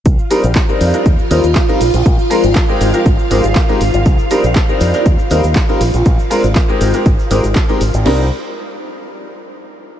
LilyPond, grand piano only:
\new Staff \with { instrumentName = "Grand piano" } { \time 4/4 \key c \minor \tempo 4 = 120 r8 <g c' d' ees' bes'>16 r8 <g c' d' ees' bes'>8 <g c' d' ees' bes'>16 r8 <g c' ees' f' bes'>16 r8 <g c' ees' f' bes'>16 r8 | r8 <aes c' d' f' bes'>16 r8 <aes c' ees' g' bes'>8 <aes c' ees' g' bes'>16 r8 <aes c' ees' g' bes'>16 r8 <aes c' ees' g' bes'>16 r8 | r8 <g c' d' ees' bes'>16 r8 <g c' d' ees' bes'>8 <g c' d' ees' bes'>16 r8 <g c' ees' f' bes'>16 r8 <g c' ees' f' bes'>16 r8 | r8 <aes c' d' f' bes'>16 r8 <aes c' ees' g' bes'>8 <aes c' ees' g' bes'>16 r8 <aes c' ees' g' bes'>16 r8 <aes c' ees' g' bes'>16 r8 |
<g c' d' ees' bes'>8 r2. r8 | }